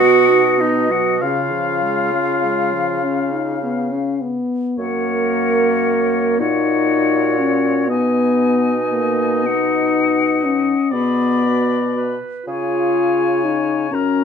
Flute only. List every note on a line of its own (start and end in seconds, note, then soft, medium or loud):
0.00 0.62 F#5 medium
0.60 0.93 D#5 medium
0.92 1.21 F#5 medium
1.21 4.17 F5 medium
4.78 6.36 F#5 medium
6.39 7.85 F#5 medium
7.89 9.48 G#5 medium
9.46 10.92 F#5 medium
10.93 12.16 B5 medium
12.47 13.93 G#5 medium
13.92 14.24 A#5 medium